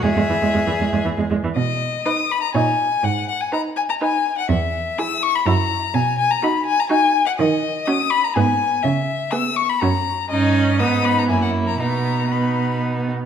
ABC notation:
X:1
M:3/4
L:1/16
Q:1/4=123
K:E
V:1 name="Violin"
e8 z4 | [K:B] d4 d'2 b a g4 | f2 f g a2 g a g3 f | e4 e'2 c' b a4 |
g2 g a b2 g a g3 f | d4 d'2 b a g4 | e4 e'2 c' b a4 | d4 d'2 b a g f2 a |
a4 b4 z4 |]
V:2 name="Violin"
G8- G2 z2 | [K:B] z4 B4 c4 | z4 B4 B4 | z4 G4 F4 |
z4 F4 F4 | z4 F4 G4 | z4 G4 F4 | D4 D4 E4 |
D4 D6 z2 |]
V:3 name="Viola"
G, G, E, G, G, E, G, G, E, G, G, E, | [K:B] z4 D3 z D3 z | z4 D3 z D3 z | z4 E3 z E3 z |
z4 D3 z D3 z | z4 C3 z B,3 z | z4 B,3 z C3 z | C4 B,4 A,4 |
B,4 B,6 z2 |]
V:4 name="Cello" clef=bass
E,, E,, E,, E,, E,, E,, E,, E,, E,, E,, E,, E,, | [K:B] B,,3 z4 z A,,3 z | G,,3 z8 z | E,,3 z4 z F,,3 z |
B,,3 z8 z | D,3 z4 z G,,3 z | C,3 z4 z F,,3 z | =G,,4 ^G,,4 F,,4 |
B,,8- B,,2 z2 |]